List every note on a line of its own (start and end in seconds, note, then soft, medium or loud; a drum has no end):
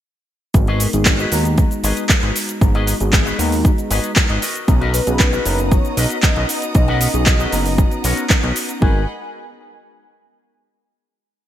0.54 0.87 G#1 loud
0.54 0.90 G#3 medium
0.54 0.90 B3 medium
0.54 0.90 D#4 medium
0.54 0.91 F#4 medium
0.54 0.91 A#4 medium
0.54 kick loud
0.54 closed hi-hat medium
0.54 shaker soft
0.67 0.87 F#4 medium
0.67 0.87 G#4 loud
0.67 0.87 B4 loud
0.67 0.87 D#5 loud
0.67 closed hi-hat soft
0.80 open hi-hat loud
0.80 shaker medium
0.93 1.26 G#1 medium
0.93 1.29 G#3 medium
0.93 1.29 B3 medium
0.93 1.29 D#4 medium
0.93 1.29 F#4 medium
0.93 1.29 G#4 medium
0.93 closed hi-hat medium
0.93 shaker soft
1.05 muted clean electric guitar stroke soft
1.05 kick loud
1.05 clap loud
1.05 closed hi-hat medium
1.05 shaker soft
1.19 1.45 F#4 medium
1.19 1.45 G#4 medium
1.19 1.45 B4 medium
1.19 1.45 D#5 medium
1.19 closed hi-hat soft
1.19 shaker soft
1.31 1.65 D#2 medium
1.31 2.58 G#3 medium
1.31 2.58 B3 medium
1.31 2.58 D#4 medium
1.31 2.59 F#4 medium
1.31 2.59 A#5 loud
1.31 open hi-hat loud
1.31 shaker medium
1.45 closed hi-hat medium
1.45 shaker soft
1.58 kick loud
1.58 closed hi-hat medium
1.58 shaker soft
1.71 muted clean electric guitar stroke soft
1.71 closed hi-hat soft
1.71 shaker soft
1.84 1.93 G#1 medium
1.84 2.03 F#4 loud
1.84 2.03 G#4 medium
1.84 2.03 B4 loud
1.84 2.04 D#5 loud
1.84 open hi-hat loud
1.84 shaker medium
1.97 closed hi-hat medium
1.97 shaker soft
2.09 kick loud
2.09 clap loud
2.09 closed hi-hat medium
2.09 shaker soft
2.23 2.32 G#1 loud
2.23 2.35 F#4 medium
2.23 2.35 G#4 medium
2.23 2.35 B4 medium
2.23 2.36 D#5 medium
2.23 closed hi-hat soft
2.36 open hi-hat loud
2.36 shaker medium
2.49 muted clean electric guitar stroke soft
2.49 closed hi-hat medium
2.49 shaker soft
2.61 2.94 G#1 loud
2.61 2.97 G#3 medium
2.61 2.97 B3 medium
2.61 2.97 D#4 medium
2.61 2.98 F#4 medium
2.61 2.98 A#5 medium
2.61 kick loud
2.61 closed hi-hat medium
2.61 shaker soft
2.75 2.94 F#4 loud
2.75 2.94 G#4 medium
2.75 2.94 B4 loud
2.75 2.94 D#5 loud
2.75 closed hi-hat soft
2.87 open hi-hat loud
2.87 shaker medium
3.00 3.33 G#1 medium
3.00 3.36 G#3 medium
3.00 3.36 B3 medium
3.00 3.36 D#4 medium
3.00 3.36 F#4 medium
3.00 3.36 G#4 loud
3.00 closed hi-hat medium
3.00 shaker soft
3.13 muted clean electric guitar stroke soft
3.13 kick loud
3.13 clap loud
3.13 closed hi-hat medium
3.13 shaker soft
3.26 3.52 F#4 medium
3.26 3.52 G#4 medium
3.26 3.52 B4 medium
3.26 3.52 D#5 medium
3.26 closed hi-hat soft
3.26 shaker soft
3.38 3.71 D#2 medium
3.38 4.40 G#3 medium
3.38 4.41 B3 medium
3.38 4.41 D#4 medium
3.38 4.41 F#4 medium
3.38 4.41 A#5 loud
3.38 open hi-hat loud
3.38 shaker medium
3.52 open hi-hat medium
3.52 shaker soft
3.65 kick loud
3.65 closed hi-hat medium
3.65 shaker soft
3.78 muted clean electric guitar stroke soft
3.78 closed hi-hat soft
3.78 shaker soft
3.90 4.00 G#1 medium
3.90 4.10 F#4 loud
3.90 4.10 G#4 medium
3.90 4.10 B4 loud
3.90 4.10 D#5 loud
3.90 open hi-hat loud
3.90 shaker medium
4.04 closed hi-hat medium
4.04 shaker soft
4.16 kick loud
4.16 clap loud
4.16 closed hi-hat medium
4.16 shaker soft
4.30 4.38 G#1 loud
4.30 4.41 F#4 medium
4.30 4.42 G#4 medium
4.30 4.41 B4 medium
4.30 4.41 D#5 medium
4.30 closed hi-hat soft
4.42 4.73 F#4 medium
4.42 4.73 A#4 medium
4.42 4.73 B4 medium
4.42 4.73 D#5 loud
4.42 open hi-hat loud
4.42 shaker medium
4.55 closed hi-hat medium
4.55 shaker soft
4.68 5.01 B1 loud
4.68 5.04 B3 medium
4.68 8.78 B3 medium
4.68 5.04 C#4 medium
4.68 5.04 D#4 medium
4.68 5.04 F#4 medium
4.68 8.78 F#5 medium
4.68 8.78 A#5 medium
4.68 5.04 A#5 medium
4.68 8.78 D#6 medium
4.68 kick loud
4.68 closed hi-hat soft
4.68 shaker soft
4.81 5.00 F#4 loud
4.81 5.00 A#4 medium
4.81 5.01 B4 loud
4.81 5.01 D#5 loud
4.81 closed hi-hat soft
4.94 5.73 B4 loud
4.94 open hi-hat loud
4.94 shaker medium
5.07 5.39 B1 medium
5.07 5.42 B3 medium
5.07 5.43 C#4 medium
5.07 5.43 D#4 medium
5.07 5.43 F#4 medium
5.07 5.43 G#4 loud
5.07 closed hi-hat medium
5.07 shaker soft
5.19 muted clean electric guitar stroke soft
5.19 kick loud
5.19 clap loud
5.19 closed hi-hat medium
5.19 shaker soft
5.33 5.59 F#4 medium
5.33 5.59 A#4 medium
5.33 5.59 B4 medium
5.33 5.59 D#5 medium
5.33 closed hi-hat soft
5.33 shaker soft
5.45 5.78 F#1 medium
5.45 6.71 B3 medium
5.45 6.72 C#4 medium
5.45 6.72 D#4 medium
5.45 6.72 F#4 medium
5.45 6.73 A#5 loud
5.45 open hi-hat loud
5.45 shaker medium
5.59 closed hi-hat soft
5.59 shaker soft
5.71 5.99 C#5 loud
5.71 kick loud
5.71 closed hi-hat medium
5.71 shaker soft
5.84 muted clean electric guitar stroke soft
5.84 closed hi-hat soft
5.84 shaker soft
5.97 6.06 B1 medium
5.97 6.17 F#4 loud
5.97 6.17 A#4 loud
5.97 6.17 B4 loud
5.97 6.74 D#5 loud
5.97 6.17 D#5 loud
5.97 open hi-hat loud
5.97 shaker medium
6.10 closed hi-hat medium
6.10 shaker soft
6.23 kick loud
6.23 clap loud
6.23 closed hi-hat medium
6.23 shaker soft
6.36 6.45 B1 loud
6.36 6.49 F#4 medium
6.36 6.49 A#4 medium
6.36 6.49 B4 medium
6.36 6.49 D#5 medium
6.36 closed hi-hat soft
6.49 open hi-hat loud
6.49 shaker medium
6.62 muted clean electric guitar stroke soft
6.62 closed hi-hat medium
6.62 shaker soft
6.74 7.08 B1 loud
6.74 7.11 B3 medium
6.74 7.11 C#4 medium
6.74 7.11 D#4 medium
6.74 7.11 F#4 medium
6.74 8.26 D#5 loud
6.74 7.11 A#5 medium
6.74 kick loud
6.74 closed hi-hat medium
6.74 shaker soft
6.88 7.07 F#4 medium
6.88 7.07 A#4 loud
6.88 7.07 B4 loud
6.88 7.07 F#5 loud
6.88 closed hi-hat soft
7.01 open hi-hat loud
7.01 shaker medium
7.13 7.46 B1 medium
7.13 7.49 B3 medium
7.13 7.49 C#4 medium
7.13 7.49 D#4 medium
7.13 7.50 F#4 medium
7.13 7.50 G#4 loud
7.13 closed hi-hat medium
7.13 shaker soft
7.26 kick loud
7.26 clap loud
7.26 closed hi-hat medium
7.26 shaker soft
7.40 7.66 F#4 medium
7.40 7.66 A#4 medium
7.40 7.66 B4 medium
7.40 7.66 D#5 loud
7.40 closed hi-hat soft
7.40 shaker soft
7.51 7.85 F#1 medium
7.51 8.78 B3 medium
7.51 8.78 C#4 medium
7.51 8.79 D#4 medium
7.51 8.79 F#4 medium
7.51 8.79 A#5 loud
7.51 open hi-hat loud
7.51 shaker medium
7.66 open hi-hat medium
7.66 shaker soft
7.78 kick loud
7.78 closed hi-hat medium
7.78 shaker soft
7.91 muted clean electric guitar stroke soft
7.91 closed hi-hat soft
7.91 shaker soft
8.04 8.13 B1 medium
8.04 8.24 F#4 loud
8.04 8.24 A#4 loud
8.04 8.24 B4 loud
8.04 8.24 C#5 loud
8.04 open hi-hat loud
8.04 shaker medium
8.17 closed hi-hat soft
8.17 shaker soft
8.30 kick loud
8.30 clap loud
8.30 closed hi-hat medium
8.30 shaker soft
8.43 8.52 B1 loud
8.43 8.56 F#4 medium
8.43 8.56 A#4 medium
8.43 8.56 B4 medium
8.43 8.56 D#5 medium
8.43 closed hi-hat soft
8.56 open hi-hat loud
8.56 shaker medium
8.69 muted clean electric guitar stroke soft
8.69 closed hi-hat medium
8.69 shaker soft
8.80 9.06 G#1 loud
8.80 9.00 G#3 medium
8.80 9.01 B3 medium
8.80 9.01 D#4 medium
8.80 9.06 F#4 medium
8.80 9.02 F#4 medium
8.80 9.06 G#4 medium
8.80 9.02 A#4 loud
8.80 9.06 B4 medium
8.80 9.06 D#5 medium
8.80 9.06 F#5 medium
8.80 9.06 G#5 medium
8.80 9.06 B5 medium
8.80 kick loud